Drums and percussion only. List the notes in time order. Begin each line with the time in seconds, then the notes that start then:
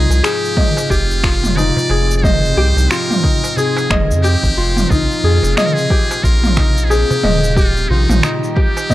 0.11 darbuka ka, shaker
0.24 finger snap, shaker
0.45 shaker
0.57 kick, mid tom, darbuka ka
0.77 darbuka tek, shaker
0.90 kick, shaker
1.11 shaker
1.24 finger snap, kick
1.44 mid tom, shaker
1.57 darbuka ka, darbuka tek, shaker
1.77 darbuka dum, shaker
1.90 darbuka tek
2.10 darbuka ka, shaker
2.24 kick, mid tom, shaker
2.45 shaker
2.77 darbuka ka, shaker
2.91 finger snap, shaker
3.11 mid tom, shaker
3.24 kick, darbuka ka
3.44 darbuka tek, shaker
3.57 darbuka dum, shaker
3.77 darbuka tek, shaker
3.90 finger snap, kick, mid tom
4.11 shaker
4.25 shaker
4.44 kick, shaker
4.77 mid tom, shaker
4.90 kick, shaker
5.11 shaker
5.43 darbuka ka, shaker
5.57 finger snap, mid tom, shaker
5.78 shaker
5.90 kick, darbuka ka
6.11 darbuka tek, shaker
6.24 kick, shaker
6.44 mid tom, shaker
6.57 finger snap, kick
6.78 shaker
6.90 darbuka ka, darbuka tek, shaker
7.11 darbuka dum, shaker
7.24 mid tom, darbuka tek
7.44 darbuka ka, shaker
7.57 kick, shaker
7.77 shaker
7.91 darbuka dum
8.09 mid tom, darbuka ka, shaker
8.23 finger snap, shaker
8.44 shaker
8.57 kick, darbuka ka
8.77 darbuka tek, shaker
8.90 kick, mid tom, darbuka dum, shaker